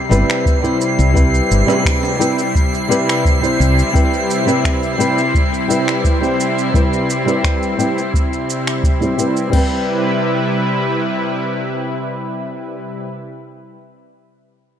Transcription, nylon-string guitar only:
0.09 G3 C4 E4 B4
0.62 G3 C4 E4 C5
1.14 G3 C4 E4 B4
1.66 G3 C4 E4 B4
2.19 G3 C4 E4 B4
2.88 G3 C4 E4 B4
3.41 G3 C4 E4 C5
3.93 G3 C4 E4 B4
4.46 G3 C4 E4 B4
4.98 G3 C4 E4 B4
5.68 G3 C4 E4 B4
6.21 G3 C4 E4 C5
6.73 G3 C4 E4 B4
7.26 G3 C4 E4 B4
7.77 G3 C4 E4 B4
9.00 G3 C4 E4 C5
9.17 G3 C4 E4 B4
9.50 G3 C4
9.54 E4 B4

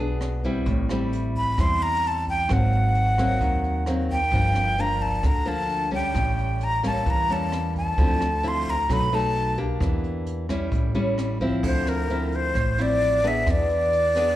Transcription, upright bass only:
Already playing: B1
0.66 A1
1.58 E2
2.49 G#1
3.41 D#2
4.31 G1
5.23 D2
6.15 A1
7.06 E2
7.98 D2
8.89 B1
9.80 E2
10.72 A1
11.63 D2
12.55 A1
13.47 E2

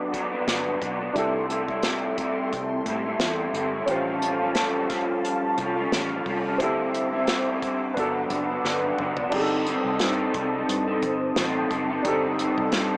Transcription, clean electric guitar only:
Already playing: D3 F#3 B3 D4
0.12 D3 F#3 B3 D4
0.31 F#3 B3 D4
0.47 G2 D3 F#3 B3 D4
0.80 D3 F#3 B3 D4
1.00 F#3 B3 D4
1.15 C3 G3 A3 E4
1.48 C3 G3 A3 E4
1.68 G3 A3 E4
1.82 C3 G3 A3 E4
2.17 C3 G3 A3 E4
2.86 C3 G3 A3 E4
3.05 G3 A3 E4
3.20 C3 G3 A3 E4
3.54 C3 G3 A3 E4
3.73 G3 A3 E4
3.88 A2 F3 G3 C#4 F4
4.21 F3 G3 C#4 F4
4.40 G3 C#4 F4
4.56 A2 F3 G3 C#4 F4
4.89 F3 G3 C#4 F4
5.57 F3 G3 C#4 F4
5.76 G3 C#4 F4
5.92 A2 F3 G3 C#4 F4
6.26 F3 G3 C#4 F4
6.44 G3 C#4 F4
6.59 D3 G3 C4 E4
7.12 G3 C4 E4
7.27 D3 G3 C4 E4
7.61 D3 G3 C4 E4
7.95 G2 D3 F#3 B3 D4
8.30 D3 F#3 B3 D4
8.48 F#3 B3 D4
8.63 G2 D3 F#3 B3 D4
8.98 D3 F#3 B3 D4
9.16 F#3 B3 D4
9.32 G3 C4 D#4 A4
9.66 G3 C4 D#4 A4
10.01 G3 C4 D#4 A4
10.35 G3 C4 D#4 A4
10.53 C4 D#4 A4
10.88 C4 D#4 A4
11.37 G3 C4 D#4 A4
11.70 G3 C4 D#4 A4
11.89 C4 D#4 A4
12.05 G3 C4 D#4 A4
12.38 G3 C4 D#4 A4
12.73 G3 C4 D#4 A4

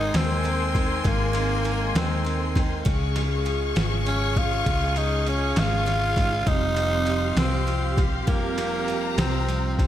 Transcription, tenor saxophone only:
Already playing: D#4
0.16 C4
1.07 A#3
1.97 C4
4.08 C#4
4.38 F4
4.98 D#4
5.28 C#4
5.59 F4
6.48 D#4
7.38 C4
8.28 A#3
9.19 C4

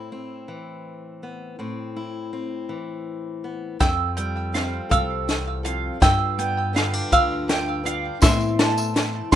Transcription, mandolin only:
3.80 E6
4.17 G5
4.54 F5
4.91 E6
5.65 F5
6.02 E6
6.39 G5
6.76 F5
7.12 E6
7.49 G5
7.86 F5
8.22 C6
8.59 A5
9.32 C6

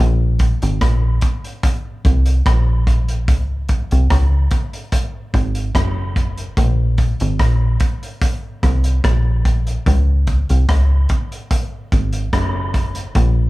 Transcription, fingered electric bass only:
0.00 A#1
0.63 G#1
0.82 A#1
2.06 C2
2.47 A#1
3.29 C#2
3.92 C2
4.11 C#2
5.34 G#1
5.76 F#1
6.58 A#1
7.21 G#1
7.40 A#1
8.64 C2
9.05 A#1
9.87 C#2
10.50 C2
10.69 C#2
11.93 G#1
12.34 F#1
13.16 A#1

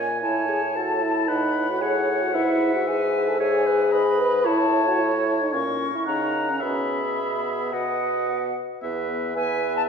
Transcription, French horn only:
0.22 E4
0.49 G#4
0.76 F#4
1.02 E4
1.28 D#4
1.70 F#4
1.82 G#4
2.23 F#4
2.35 E4
2.76 F#4
2.88 G#4
3.28 A4
3.41 G#4
4.20 B4
4.47 E4
4.88 F#4
5.00 E4
5.41 D#4
5.53 C#4
5.95 E4
6.07 D#4
6.50 C#4
6.63 C#4
7.18 B3
8.82 B3
9.37 B3

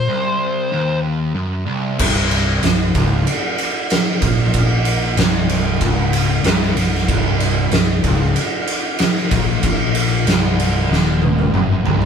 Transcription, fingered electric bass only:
2.00 C1
2.63 C1
2.95 C#1
4.22 A#1
5.16 C1
5.81 C#1
6.43 C1
6.75 C1
7.08 C1
7.71 C1
8.04 C#1
9.31 A#1
10.26 C1
10.90 D#1
11.53 F#1
11.85 C1

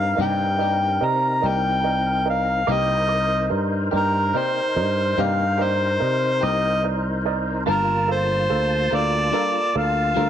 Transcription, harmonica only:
Already playing: F5
0.22 G5
1.05 A#5
1.47 G5
2.30 F5
2.72 D#5
3.97 A#4
4.37 C5
5.21 F5
5.63 C5
6.44 D#5
7.71 A#4
8.12 C5
8.95 D5
9.78 F5

